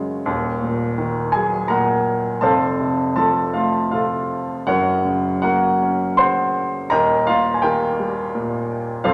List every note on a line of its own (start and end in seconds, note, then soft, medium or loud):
0.00 0.23 F#1 medium
0.00 0.22 F#2 medium
0.00 0.28 C#3 medium
0.00 0.22 F#3 soft
0.00 0.23 G#3 medium
0.00 0.28 F4 medium
0.00 0.28 F#4 soft
0.00 0.28 G#4 medium
0.00 0.28 C#5 medium
0.00 0.28 F5 medium
0.00 0.29 F#5 medium
0.00 0.28 G#5 medium
0.26 2.38 D#1 medium
0.26 2.38 D#2 medium
0.62 1.68 A#2 medium
0.98 2.38 D#3 medium
1.32 2.39 F#3 medium
1.32 1.68 G#4 medium
1.32 1.70 G#5 medium
1.68 2.40 A#2 medium
1.68 2.38 A#4 medium
1.68 2.38 F#5 medium
1.68 2.43 A#5 medium
2.41 4.64 F1 medium
2.41 4.64 F2 medium
2.41 3.12 A4 medium
2.41 3.13 C5 medium
2.41 3.12 F5 medium
2.41 3.14 A5 medium
2.79 3.90 C3 soft
3.16 4.64 F3 soft
3.16 3.52 A4 medium
3.16 3.51 A5 medium
3.53 4.64 A3 medium
3.53 3.90 F4 soft
3.53 3.90 F5 medium
3.91 4.65 C3 soft
3.91 4.45 F4 soft
3.91 4.46 A4 soft
3.91 4.45 F5 medium
4.67 6.86 F#1 medium
4.67 6.86 F#2 medium
4.67 5.40 F#4 medium
4.67 5.39 A#4 medium
4.67 5.39 C#5 medium
4.67 5.39 F#5 medium
5.05 6.18 C#3 soft
5.42 6.87 A#3 soft
5.42 6.14 F#4 medium
5.42 6.14 A#4 medium
5.42 6.17 F#5 medium
5.82 6.88 C#4 medium
6.17 6.89 C#3 soft
6.17 6.87 C5 medium
6.17 6.87 F#5 medium
6.17 6.86 C6 medium
6.90 9.01 D#1 medium
6.90 9.01 D#2 medium
6.90 7.25 A#4 medium
6.90 7.24 D#5 medium
6.90 7.25 G5 medium
6.90 7.27 A#5 loud
7.27 8.33 A#2 medium
7.27 7.54 F4 medium
7.27 7.54 F5 medium
7.54 7.62 G#5 medium
7.62 9.01 D#3 medium
7.62 8.66 G4 medium
7.62 8.66 A#4 medium
7.62 8.65 G5 medium
7.99 9.02 G3 medium
8.35 9.03 A#2 medium
9.04 9.14 F1 medium
9.04 9.14 F2 medium
9.04 9.14 F4 medium
9.04 9.14 A4 medium
9.04 9.14 C5 medium
9.04 9.14 F5 medium